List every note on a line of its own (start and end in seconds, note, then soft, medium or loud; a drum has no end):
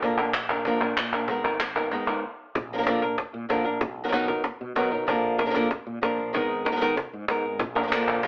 0.02 0.62 A#1 loud
0.02 0.17 D3 medium
0.02 0.18 F3 medium
0.02 0.18 A#3 medium
0.02 0.18 D4 medium
0.02 0.17 A#4 medium
0.02 cajon bass loud
0.18 0.33 A#3 soft
0.18 0.34 D4 soft
0.18 0.33 A#4 medium
0.34 muted nylon-string guitar stroke medium
0.34 cajon slap medium
0.34 clap medium
0.50 0.65 A#3 soft
0.50 0.65 D4 medium
0.50 0.65 A#4 medium
0.50 cajon bass medium
0.50 clap soft
0.65 0.81 D3 medium
0.65 0.81 F3 medium
0.65 0.81 A#3 medium
0.65 0.81 D4 medium
0.65 0.81 A#4 medium
0.65 cajon bass loud
0.81 0.96 A#2 medium
0.81 0.97 A#3 soft
0.81 0.97 D4 medium
0.81 0.97 A#4 medium
0.97 1.12 A#2 medium
0.97 muted nylon-string guitar stroke medium
0.97 cajon slap loud
0.97 clap medium
1.12 1.28 A#1 medium
1.12 1.29 A#3 soft
1.12 1.29 D4 medium
1.12 1.29 A#4 medium
1.12 cajon slap soft
1.12 clap soft
1.28 1.88 G#1 loud
1.28 1.44 D#3 medium
1.28 1.44 G#3 medium
1.28 1.44 B3 medium
1.28 1.44 D#4 medium
1.28 1.43 A#4 medium
1.28 cajon bass loud
1.44 1.60 B3 soft
1.44 1.60 D#4 soft
1.44 1.60 A#4 medium
1.60 muted nylon-string guitar stroke medium
1.60 cajon slap loud
1.60 clap medium
1.76 1.91 B3 soft
1.76 1.92 D#4 medium
1.76 1.91 A#4 medium
1.76 cajon bass medium
1.76 clap soft
1.91 2.07 D#3 medium
1.91 2.07 G#3 medium
1.91 2.07 B3 medium
1.91 2.08 D#4 medium
1.91 2.07 A#4 medium
1.91 cajon bass medium
1.91 cajon slap soft
2.08 2.23 G#2 medium
2.08 2.24 B3 soft
2.08 2.24 D#4 medium
2.08 2.23 A#4 medium
2.55 3.15 A#1 loud
2.55 muted nylon-string guitar stroke medium
2.55 cajon bass loud
2.73 2.76 F3 medium
2.73 2.77 A#3 medium
2.73 2.77 D4 medium
2.73 2.77 A#4 medium
2.78 2.81 F3 medium
2.78 2.82 A#3 medium
2.78 2.82 D4 medium
2.78 2.82 A#4 medium
2.82 2.86 F3 medium
2.82 2.86 A#3 medium
2.82 2.86 D4 medium
2.82 2.87 A#4 medium
2.86 3.02 D3 loud
2.86 3.02 F3 medium
2.86 3.02 A#3 medium
2.86 3.02 D4 loud
2.86 3.01 A#4 loud
2.86 cajon slap loud
3.02 3.17 A#3 soft
3.02 3.17 D4 medium
3.02 3.17 A#4 medium
3.02 cajon bass medium
3.18 muted nylon-string guitar stroke medium
3.18 cajon bass loud
3.18 cajon slap soft
3.34 3.49 A#2 loud
3.49 3.65 A#2 medium
3.49 3.65 D3 medium
3.49 3.65 F3 medium
3.49 3.65 A#3 medium
3.49 3.64 D4 medium
3.49 3.63 A#4 medium
3.49 cajon slap loud
3.65 3.81 A#1 medium
3.65 3.81 A#3 medium
3.65 3.81 D4 medium
3.65 3.80 A#4 medium
3.81 4.41 B1 loud
3.81 muted nylon-string guitar stroke medium
3.81 cajon bass loud
4.04 4.07 D#3 medium
4.04 4.07 F#3 medium
4.04 4.07 B3 medium
4.04 4.08 D#4 medium
4.04 4.08 A#4 medium
4.08 4.11 D#3 medium
4.08 4.12 F#3 medium
4.08 4.12 B3 medium
4.08 4.12 D#4 medium
4.08 4.12 A#4 medium
4.12 4.28 B2 medium
4.12 4.28 D#3 loud
4.12 4.28 F#3 medium
4.12 4.28 B3 loud
4.12 4.28 D#4 loud
4.12 4.27 A#4 medium
4.12 cajon slap loud
4.28 4.43 F#3 medium
4.28 4.44 B3 medium
4.28 4.44 D#4 medium
4.28 4.44 A#4 medium
4.28 cajon bass medium
4.44 muted nylon-string guitar stroke medium
4.44 cajon bass loud
4.44 cajon slap soft
4.61 4.76 B2 loud
4.75 4.91 B2 medium
4.75 4.91 B2 loud
4.75 4.91 D#3 medium
4.75 4.92 F#3 medium
4.75 4.92 B3 medium
4.75 4.91 D#4 medium
4.75 4.90 A#4 loud
4.75 cajon slap loud
4.91 5.07 B1 medium
4.91 5.07 F#3 soft
4.91 5.08 B3 medium
4.91 5.07 D#4 medium
4.91 5.07 A#4 medium
4.91 cajon slap soft
5.07 5.68 A#1 loud
5.07 5.38 D3 medium
5.07 5.39 F3 medium
5.07 5.39 A#3 medium
5.07 5.38 D4 loud
5.07 5.37 A#4 medium
5.07 cajon bass loud
5.38 5.45 A#3 soft
5.38 5.45 D4 medium
5.38 5.46 A#4 medium
5.38 cajon slap loud
5.46 5.49 F3 medium
5.46 5.49 A#3 medium
5.46 5.50 D4 medium
5.46 5.50 A#4 medium
5.50 5.54 F3 medium
5.50 5.54 A#3 medium
5.50 5.54 D4 medium
5.50 5.55 A#4 medium
5.55 5.69 D3 loud
5.55 5.69 F3 loud
5.55 5.70 A#3 medium
5.55 5.70 D4 medium
5.55 5.70 A#4 loud
5.55 cajon bass loud
5.70 muted nylon-string guitar stroke medium
5.70 cajon bass loud
5.70 cajon slap soft
5.87 6.02 A#2 medium
6.02 6.18 A#2 loud
6.02 6.33 F3 medium
6.02 6.33 A#3 medium
6.02 6.34 D4 medium
6.02 6.34 A#4 medium
6.02 cajon slap loud
6.19 6.34 A#1 medium
6.19 cajon slap soft
6.33 6.94 G#1 loud
6.33 6.65 D#3 medium
6.33 6.65 G#3 medium
6.33 6.65 B3 medium
6.33 6.65 D#4 medium
6.33 6.64 A#4 medium
6.33 cajon bass loud
6.65 6.71 B3 medium
6.65 6.71 D#4 medium
6.65 6.71 A#4 medium
6.65 cajon slap loud
6.72 6.75 G#3 medium
6.72 6.75 B3 medium
6.72 6.76 D#4 medium
6.72 6.76 A#4 medium
6.76 6.80 G#3 medium
6.76 6.80 B3 medium
6.76 6.80 D#4 medium
6.76 6.81 A#4 medium
6.81 6.96 D#3 medium
6.81 6.96 G#3 medium
6.81 6.96 B3 medium
6.81 6.96 D#4 medium
6.81 6.96 A#4 loud
6.81 cajon bass loud
6.97 muted nylon-string guitar stroke medium
6.97 cajon bass loud
7.13 7.28 G#2 medium
7.13 cajon slap soft
7.28 7.44 G#2 loud
7.28 7.60 G#3 medium
7.28 7.60 B3 medium
7.28 7.60 D#4 medium
7.28 7.61 A#4 medium
7.28 cajon slap loud
7.44 7.60 G#1 medium
7.44 cajon slap soft
7.59 8.20 A#1 loud
7.59 muted nylon-string guitar stroke medium
7.59 cajon bass loud
7.75 7.82 A#3 medium
7.75 7.83 D4 medium
7.75 7.83 A#4 medium
7.83 7.86 F3 medium
7.83 7.87 A#3 medium
7.83 7.87 D4 medium
7.83 7.87 A#4 medium
7.87 7.91 F3 medium
7.87 7.91 A#3 medium
7.87 7.92 D4 medium
7.87 7.92 A#4 medium
7.92 8.22 D3 medium
7.92 8.23 F3 medium
7.92 8.23 A#3 loud
7.92 8.24 D4 loud
7.92 8.24 A#4 medium
7.92 cajon slap loud
7.92 clap medium
8.07 cajon bass medium
8.07 clap medium
8.23 8.27 D3 medium
8.23 8.27 F3 medium
8.23 8.27 A#3 medium
8.23 cajon bass loud